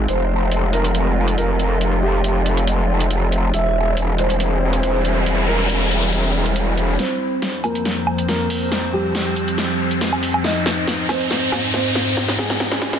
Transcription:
Already playing: ambient pad G#3 C4
0.08 wobble bass F1, ambient pad F4, felt piano C5, closed hi-hat
0.52 closed hi-hat
0.73 felt piano A#4, closed hi-hat
0.85 closed hi-hat
0.95 closed hi-hat
1.28 closed hi-hat
1.38 felt piano A#4, closed hi-hat
1.59 closed hi-hat
1.81 closed hi-hat
2.03 felt piano G4
2.24 closed hi-hat
2.46 closed hi-hat
2.57 closed hi-hat
2.67 closed hi-hat
3.00 closed hi-hat
3.11 closed hi-hat
3.32 closed hi-hat
3.54 wobble bass E1, ambient pad G3 C4 E4, felt piano E5, closed hi-hat, riser
3.97 closed hi-hat
4.18 felt piano C5, closed hi-hat
4.30 closed hi-hat
4.40 closed hi-hat
4.73 closed hi-hat
4.83 felt piano C5, closed hi-hat
5.05 closed hi-hat
5.26 closed hi-hat
5.48 felt piano A#4
5.70 closed hi-hat
5.91 closed hi-hat
6.03 closed hi-hat
6.13 closed hi-hat
6.46 closed hi-hat
6.56 closed hi-hat
6.77 closed hi-hat
6.99 ambient pad F2 F3 C4 C5, felt piano C4 C5, snare, closed hi-hat, riser
7.42 snare, closed hi-hat
7.64 felt piano A#3 A#4, closed hi-hat, low woodblock
7.75 closed hi-hat
7.85 snare, closed hi-hat
8.07 low woodblock
8.18 closed hi-hat
8.29 felt piano A#3 A#4, snare, closed hi-hat
8.50 open hi-hat
8.72 snare, closed hi-hat
8.93 felt piano G3 G4
9.15 snare, closed hi-hat
9.36 closed hi-hat
9.48 closed hi-hat
9.58 snare, closed hi-hat
9.91 closed hi-hat
10.01 snare, closed hi-hat
10.13 low woodblock
10.23 open hi-hat
10.34 low woodblock
10.44 ambient pad G#2 D#4 D#5, felt piano D#4 D#5, snare, closed hi-hat
10.66 snare
10.87 snare, closed hi-hat
11.09 felt piano C4 C5, snare, closed hi-hat, low woodblock
11.20 closed hi-hat
11.31 snare, closed hi-hat
11.52 snare, low woodblock
11.64 closed hi-hat
11.74 felt piano C4 C5, snare, closed hi-hat
11.95 snare, open hi-hat
12.17 snare, closed hi-hat
12.28 snare
12.39 felt piano G#3 G#4, snare
12.50 snare
12.60 snare, closed hi-hat
12.72 snare
12.82 snare, closed hi-hat
12.93 snare, closed hi-hat

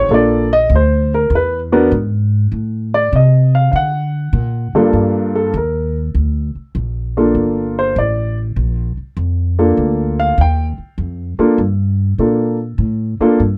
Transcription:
Already playing: grand piano C#5
0.09 upright bass A#1, grand piano A#3 D4 F4 A4
0.14 grand piano D5
0.53 grand piano D#5
0.70 upright bass D2
0.76 grand piano C5
1.14 grand piano A#4
1.30 upright bass E2
1.35 grand piano B4
1.72 grand piano B3 D4 F#4 A#4
1.92 upright bass G#2
2.52 upright bass A2
2.94 grand piano D5
3.12 upright bass C3, grand piano D#5
3.55 grand piano F5
3.72 upright bass D3, grand piano F5
3.76 grand piano F#5
4.33 upright bass A#2
4.73 grand piano G2 A#3 D4 F4 A4, muted upright bass stroke
4.93 upright bass G2
5.35 grand piano A4
5.54 upright bass D#2, grand piano A#4
6.14 upright bass D2
6.55 muted upright bass stroke
6.75 upright bass A#1
7.17 grand piano A#3 D4 F4 A4
7.35 upright bass G1
7.79 grand piano C5
7.96 upright bass A1, grand piano D5
8.56 upright bass A#1
8.97 muted upright bass stroke
9.17 upright bass F2
9.59 grand piano A#3 D4 F4 A4
9.77 upright bass D2
10.20 grand piano F5
10.38 upright bass D#2, grand piano G5
10.78 muted upright bass stroke
10.98 upright bass F2
11.38 grand piano A#3 D4 F4 A4, muted upright bass stroke
11.58 upright bass G2
12.18 upright bass A#2, grand piano A#3 D4 F4 A4
12.78 upright bass A2
13.20 grand piano A#3 D4 F4 A4, muted upright bass stroke
13.40 upright bass G2

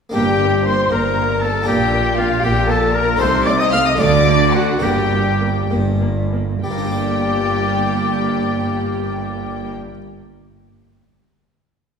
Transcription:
0.09 harpsichord A#3 D4 G4
0.14 double bass section G1, harpsichord G2, cello section G2, viola section A#3, oboe G4, violin section G4 G5
0.41 viola section A#3
0.66 viola section A#3, oboe C5, violin section C5 C6
0.91 double bass section G1, harpsichord G2, cello section G2, viola section A#3, oboe A#4, violin section A#4 A#5
1.18 viola section A#3
1.41 viola section A#3, oboe A4, violin section A4 A5
1.62 harpsichord A#3 D4 G4
1.66 double bass section A#1, harpsichord A#2, cello section A#2, viola section A#3, oboe G4, violin section G4 G5
1.93 viola section A#3
2.17 viola section A#3, oboe F4, violin section F4 F5
2.43 double bass section A#1, harpsichord A#2, cello section A#2, viola section A#3, violin section G4 G5, oboe G4
2.69 viola section A#3, violin section A4 A5, oboe A4
2.93 viola section A#3, violin section A#4 A#5, oboe A#4
3.16 harpsichord A3 D#4 A4, viola section A3, violin section C5 C6
3.20 double bass section C2, harpsichord C3, cello section C3, oboe C5
3.45 viola section A3, violin section D5 D6, oboe D5
3.59 violin section D#5 D#6, oboe D#5
3.70 viola section A3, violin section F5 F6, oboe F5
3.86 violin section D#5 D#6, oboe D#5
3.95 harpsichord A3 D4 F#4, viola section A3, violin section D6
3.99 double bass section D2, cello section D3, harpsichord D3, oboe D5, violin section D5
4.26 viola section A3
4.53 viola section A3, oboe F#4, violin section F#4 F#5
4.78 cello section G2, harpsichord A#3 D4 G4, viola section A#3, violin section G5
4.82 double bass section G1, harpsichord G2, oboe G4, violin section G4
5.12 viola section A#3
5.40 viola section A#3
5.70 double bass section G1, harpsichord G2, cello section G2, viola section A#3
6.00 viola section A#3
6.33 viola section A#3
6.62 double bass section G1, cello section G2, harpsichord G3, viola section A#3, violin section G4 G5, oboe D5
6.71 harpsichord A#3
6.78 harpsichord D4
6.85 harpsichord G4
6.92 harpsichord D5

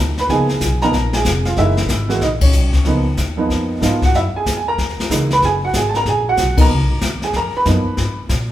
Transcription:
Already playing: upright bass D2
0.17 upright piano B4 B5, snare
0.29 upright bass C#2, upright piano F3 A#3 B3 D#4 G#4 G#5, brush sweep, kick, snare
0.49 snare
0.61 upright bass B1, kick, snare, hi-hat pedal
0.81 upright piano F3 A#3 B3 D#4 A#4 A#5, snare
0.93 upright bass A#1, brush sweep, kick, snare
1.13 upright piano G#4 G#5, snare
1.25 upright bass F1, kick, snare, hi-hat pedal
1.45 upright piano F4 F5, snare
1.56 upright bass F#1, upright piano E3 G#3 A#3 D#4 E5, brush sweep, kick, snare
1.61 upright piano E4
1.77 snare
1.89 upright bass G#1, kick, snare, hi-hat pedal
2.09 upright piano E3 G#3 A#3 F#4, snare
2.21 upright bass A#1, upright piano D#4 D#5, brush sweep, kick, snare
2.41 upright piano C#4 C#5, kick, ride
2.52 upright bass B1, hi-hat pedal
2.73 muted upright bass stroke, kick, snare
2.85 upright bass C#2, upright piano F3 A#3 B3 D#4, brush sweep, snare
3.17 upright bass D#2, kick, snare, hi-hat pedal
3.37 upright piano F3 A#3 B3 D#4
3.50 upright bass F2, brush sweep, kick, snare
3.80 upright bass G#2, upright piano F3 A#3 B3 D#4 F5, kick, snare, hi-hat pedal
3.85 upright piano F4
4.02 upright piano F#4 F#5, kick, snare
4.14 upright bass F#2, upright piano E4 E5, brush sweep, snare
4.34 upright piano G#4 G#5, muted upright bass stroke
4.46 upright bass E2, kick, snare, hi-hat pedal
4.57 upright piano G#5
4.68 upright piano A#4 A#5
4.78 upright bass D#2, brush sweep, kick, snare
4.89 snare
4.98 muted upright bass stroke, snare
5.10 upright bass C#2, upright piano E3 G#3 A#3 D#4, kick, snare, hi-hat pedal
5.30 upright piano B4 B5, snare
5.42 upright bass F#1, upright piano G#4 G#5, brush sweep, kick, snare
5.65 upright piano F#4 F#5
5.73 upright bass G#1, upright piano G#4 G#5, kick, snare, hi-hat pedal
5.89 upright piano A5
5.94 upright piano A#4 A#5, snare
6.05 upright bass A#1, upright piano G#4 G#5, brush sweep, kick, snare
6.29 upright piano F#4 F#5
6.37 upright bass B1, kick, snare, hi-hat pedal
6.57 upright piano F3 A#3 B3 D#4, kick, ride
6.61 upright piano A#4 A#5
6.69 upright bass C#2, brush sweep
6.80 upright bass B1
6.91 upright bass G#1
7.01 upright bass D#2, kick, snare, hi-hat pedal
7.22 upright piano G#4 G#5, snare
7.33 upright bass F2, upright piano A#4 A#5, brush sweep, kick, snare
7.54 upright piano B4 B5, muted upright bass stroke
7.65 upright bass F#2, upright piano F3 A#3 B3 D#4, kick, snare, hi-hat pedal
7.86 muted upright bass stroke
7.97 upright bass G#2, brush sweep, kick, snare
8.17 muted upright bass stroke
8.29 upright bass A#2, kick, snare, hi-hat pedal

